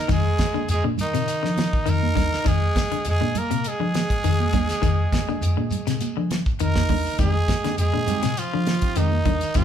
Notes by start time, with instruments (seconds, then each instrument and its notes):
Already playing: alto saxophone D#4, trumpet A#4
0.08 fingered electric bass F2, clean electric guitar D#3, alto saxophone G#3, trumpet G#4, kick, closed hi-hat, low conga, shekere
0.39 kick, snare, closed hi-hat, high conga, shekere
0.54 clean electric guitar D3, muted fingered electric bass stroke, high conga, shekere
0.69 fingered electric bass F2, trumpet G#4, closed hi-hat, shekere
0.73 alto saxophone G#3
0.84 fingered electric bass A#2, clean electric guitar D3, high conga
0.98 alto saxophone D#3, trumpet D#4, closed hi-hat, low conga, shekere
1.14 fingered electric bass A#2, clean electric guitar C3, closed hi-hat, shekere
1.28 closed hi-hat, shekere
1.43 clean electric guitar D3, fingered electric bass F3, snare
1.57 snare, closed hi-hat, high conga, shekere
1.73 muted fingered electric bass stroke, kick, shekere
1.86 fingered electric bass F2, clean electric guitar D#3, alto saxophone D#4, trumpet A#4, closed hi-hat, shekere
2.03 high conga
2.15 fingered electric bass D#2, clean electric guitar D3, kick, snare, closed hi-hat, high conga, low conga, shekere
2.33 snare, shekere
2.45 fingered electric bass F2, clean electric guitar D#3, alto saxophone G#3, trumpet G#4, kick, closed hi-hat, shekere
2.76 kick, snare, closed hi-hat, high conga, shekere
2.92 clean electric guitar D3, muted fingered electric bass stroke, closed hi-hat, shekere
3.05 fingered electric bass F2, alto saxophone G#3, closed hi-hat, shekere
3.10 trumpet G#4
3.21 fingered electric bass A#2, clean electric guitar D3, high conga
3.35 alto saxophone A#3, trumpet A#4, closed hi-hat, low conga, shekere
3.51 fingered electric bass A#2, clean electric guitar C3, closed hi-hat, shekere
3.64 alto saxophone G#3, closed hi-hat, shekere
3.69 trumpet G#4
3.80 clean electric guitar D3, fingered electric bass F3
3.94 snare, closed hi-hat, high conga, shekere
4.10 muted fingered electric bass stroke, kick, closed hi-hat, shekere
4.24 fingered electric bass F2, clean electric guitar D#3, closed hi-hat, shekere
4.40 high conga
4.53 fingered electric bass D#2, clean electric guitar D3, kick, closed hi-hat, high conga, low conga, shekere
4.69 snare, closed hi-hat, shekere
4.82 fingered electric bass F2, clean electric guitar D#3, kick, closed hi-hat, shekere
5.12 kick, snare, closed hi-hat, high conga, shekere
5.28 clean electric guitar D3, muted fingered electric bass stroke, high conga, shekere
5.41 fingered electric bass F2, closed hi-hat, shekere
5.57 fingered electric bass A#2, clean electric guitar D3, high conga
5.71 closed hi-hat, low conga, shekere
5.87 fingered electric bass A#2, clean electric guitar C3, snare, closed hi-hat, shekere
6.01 closed hi-hat, high conga, shekere
6.17 clean electric guitar D3, fingered electric bass F3
6.30 snare, closed hi-hat, high conga, low conga, shekere
6.46 muted fingered electric bass stroke, kick, shekere
6.59 fingered electric bass F2, clean electric guitar D#3, alto saxophone D#4, trumpet A#4, closed hi-hat, shekere
6.75 kick, snare, high conga
6.89 fingered electric bass D#2, clean electric guitar D3, kick, open hi-hat, high conga, low conga, shekere
7.06 shekere
7.19 fingered electric bass F2, clean electric guitar D#3 G#3 C4 D#4 G4, alto saxophone G#3, trumpet G#4, kick, closed hi-hat, shekere
7.35 muted clean electric guitar stroke
7.48 muted clean electric guitar stroke, kick, snare, closed hi-hat, high conga, shekere
7.63 clean electric guitar D3 C4 D#4 G4, muted fingered electric bass stroke, snare, closed hi-hat, high conga, shekere
7.77 fingered electric bass F2, alto saxophone G#3, trumpet G#4, muted clean electric guitar stroke, closed hi-hat, shekere
7.94 fingered electric bass A#2, clean electric guitar D3, high conga
8.06 clean electric guitar G#3 C4 D#4 G4, closed hi-hat, low conga, shekere
8.23 fingered electric bass A#2, clean electric guitar C3, snare, closed hi-hat, shekere
8.37 alto saxophone F3, trumpet F4, closed hi-hat, shekere
8.52 clean electric guitar D3, fingered electric bass F3, muted clean electric guitar stroke
8.66 muted clean electric guitar stroke, snare, closed hi-hat, high conga, shekere
8.82 clean electric guitar C4 D#4 G4, muted fingered electric bass stroke, kick, closed hi-hat, shekere
8.96 fingered electric bass F2, clean electric guitar D#3 G#3 C4 D#4 G4, alto saxophone D#3, trumpet D#4, closed hi-hat, shekere
9.12 muted clean electric guitar stroke, high conga
9.25 fingered electric bass D#2, clean electric guitar D3, kick, closed hi-hat, high conga, low conga, shekere
9.41 muted clean electric guitar stroke, closed hi-hat, shekere
9.54 fingered electric bass F2, clean electric guitar D#3 G#3 C4 D#4 G4, alto saxophone F3, trumpet F4, kick, closed hi-hat, shekere